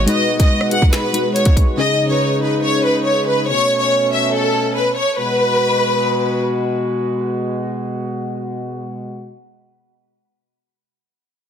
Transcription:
Already playing: brass ensemble B2 G#3 F#4, synth keys G#3 D#4 F#4 B4
0.06 synth keys G#3 D#4 F#4 B4, violin section D#5, closed hi-hat
0.40 violin section D#5, kick, closed hi-hat
0.61 cross-stick
0.70 synth keys G#3 D#4 F#4 G#4, violin section F#5, closed hi-hat
0.82 kick
0.93 violin section B4, finger snap, snare, closed hi-hat
1.13 synth keys G#3 D#4 F#4 B4, closed hi-hat
1.35 violin section C#5, closed hi-hat
1.45 kick, closed hi-hat
1.57 kick, closed hi-hat
1.77 synth keys C#3 C#4 D#4 G#4, brass ensemble C#3 D#4, violin section D#5
2.09 synth keys C#3 C#4 D#4 B4, violin section C#5
2.42 violin section B4
2.63 violin section C#5
2.85 violin section B4
3.06 violin section C#5
3.27 violin section B4
3.48 brass ensemble B2 A3 C#4, violin section C#5
3.80 violin section C#5
4.12 violin section E5
4.33 violin section A4
4.75 violin section B4
4.97 violin section C#5
5.18 brass ensemble B2 G#3 F#4, violin section B4

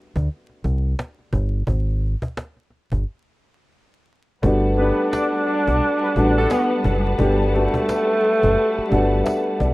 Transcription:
0.16 fingered electric bass D2, cajon bass
0.28 cajon slap
0.50 cajon slap
0.64 fingered electric bass C2, cajon bass
0.84 cajon slap
0.99 cajon slap
1.19 cajon slap
1.33 fingered electric bass G1, cajon bass
1.53 cajon slap
1.67 fingered electric bass G#1, cajon bass
1.87 cajon slap
2.01 cajon slap
2.22 cajon bass
2.37 cajon slap
2.57 cajon slap
2.70 cajon slap
2.92 fingered electric bass G1, cajon bass
4.42 fingered electric bass G1, upright piano G3 A3 B3 D4 F#4, string section G3 B4 F#5 A5, cajon bass
4.63 cajon slap
4.77 upright piano G3 A3 B3 D4 G4, trumpet section B3 B4, tenor saxophone D4, cajon slap
4.98 cajon slap
5.11 trumpet section D4 D5, cajon slap, tambourine
5.33 cajon slap
5.45 trumpet section D4 D5, cajon slap
5.67 fingered electric bass B1, cajon bass
5.80 cajon slap
6.01 trumpet section B3 B4, cajon slap
6.15 fingered electric bass A1, upright piano G3 A3 B3 D4 F#4, cajon bass
6.36 trumpet section A3 A4, cajon slap
6.50 tenor saxophone B3, cajon slap, tambourine
6.70 cajon slap
6.84 fingered electric bass F#1, cajon bass
7.05 cajon slap
7.18 fingered electric bass G1, upright piano G3 A3 B3 D4 G4, cajon bass
7.39 cajon slap
7.53 upright piano G3 A3 B3 D4 F#4, tenor saxophone A3, cajon slap
7.74 cajon bass
7.89 cajon slap, tambourine
8.08 cajon slap
8.22 cajon slap
8.43 fingered electric bass F#1, cajon bass
8.56 cajon slap
8.77 muted fingered electric bass stroke, cajon slap
8.89 fingered electric bass G1, upright piano G3 A3 B3 D4 F#4 F#5, cajon bass
9.12 cajon slap
9.24 upright piano E5, cajon slap, tambourine
9.46 cajon slap
9.59 fingered electric bass B1, upright piano D5, cajon bass

